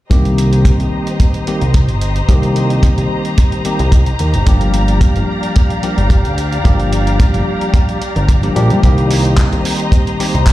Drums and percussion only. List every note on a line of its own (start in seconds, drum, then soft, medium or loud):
0.11 kick loud
0.11 closed hi-hat medium
0.25 closed hi-hat soft
0.38 closed hi-hat medium
0.53 closed hi-hat soft
0.65 kick loud
0.65 closed hi-hat medium
0.80 closed hi-hat soft
1.07 closed hi-hat soft
1.20 kick loud
1.20 closed hi-hat medium
1.34 closed hi-hat soft
1.47 closed hi-hat medium
1.61 closed hi-hat soft
1.74 kick loud
1.74 closed hi-hat medium
1.89 closed hi-hat soft
2.01 closed hi-hat medium
2.16 closed hi-hat soft
2.29 kick loud
2.29 closed hi-hat medium
2.43 closed hi-hat soft
2.56 closed hi-hat medium
2.70 closed hi-hat soft
2.83 kick loud
2.83 closed hi-hat medium
2.98 closed hi-hat soft
3.25 closed hi-hat soft
3.38 kick loud
3.38 closed hi-hat medium
3.52 closed hi-hat soft
3.65 closed hi-hat medium
3.79 closed hi-hat soft
3.92 kick loud
3.92 closed hi-hat medium
4.06 closed hi-hat soft
4.19 closed hi-hat medium
4.34 closed hi-hat soft
4.47 kick loud
4.47 closed hi-hat medium
4.61 closed hi-hat soft
4.74 closed hi-hat medium
4.88 closed hi-hat soft
5.01 kick loud
5.01 closed hi-hat medium
5.16 closed hi-hat soft
5.43 closed hi-hat soft
5.56 kick loud
5.56 closed hi-hat medium
5.70 closed hi-hat soft
5.83 closed hi-hat medium
5.98 closed hi-hat soft
6.10 kick loud
6.10 closed hi-hat medium
6.25 closed hi-hat soft
6.38 closed hi-hat medium
6.52 closed hi-hat soft
6.65 kick loud
6.65 closed hi-hat medium
6.80 closed hi-hat soft
6.93 closed hi-hat medium
7.07 closed hi-hat soft
7.20 kick loud
7.20 closed hi-hat medium
7.34 closed hi-hat soft
7.61 closed hi-hat soft
7.74 kick loud
7.74 closed hi-hat medium
7.89 closed hi-hat soft
8.02 closed hi-hat medium
8.16 closed hi-hat soft
8.29 kick loud
8.29 closed hi-hat medium
8.43 closed hi-hat soft
8.56 closed hi-hat medium
8.70 closed hi-hat soft
8.83 kick loud
8.83 closed hi-hat medium
8.98 closed hi-hat soft
9.11 open hi-hat loud
9.25 closed hi-hat soft
9.38 kick loud
9.38 clap loud
9.38 closed hi-hat medium
9.53 closed hi-hat soft
9.65 open hi-hat medium
9.80 closed hi-hat soft
9.92 kick loud
9.92 closed hi-hat medium
10.07 closed hi-hat soft
10.20 open hi-hat medium
10.35 closed hi-hat soft
10.47 kick loud
10.47 clap loud
10.47 closed hi-hat medium